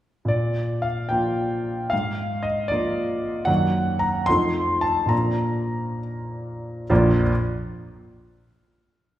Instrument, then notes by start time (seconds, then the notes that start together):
grand piano
0.25 A#2 D5
0.82 F5
1.09 F3 A#3 F4 G5
1.90 G#2 F5
2.43 D#5
2.68 F3 A#3 D5
2.72 F4
3.45 F#2 D#3 A#3 F#4 F#5
3.99 A#5
4.26 F2 F3 C6
4.30 A3 D#4
4.81 A5
5.06 A#2 F3 A#3 A#5
5.11 D4
6.90 A#1 F2 F3 A#3 D4 F4